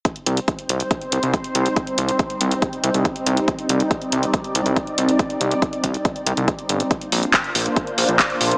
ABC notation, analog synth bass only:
X:1
M:4/4
L:1/16
Q:1/4=140
K:Cm
V:1 name="Analog synth bass" clef=bass
z2 C,, z3 C,, z3 C,, C,, z2 C,, z | z2 C,, z3 C,, z3 C,, C,, z2 C,, z | z2 C,, z3 C,, z3 C,, C,, z2 C,, z | z2 C,, z3 C,, z3 C,, C,, z2 G,,, z |
z2 B,,, z3 B,,, z3 B,,, B,,, z2 B,,, z |]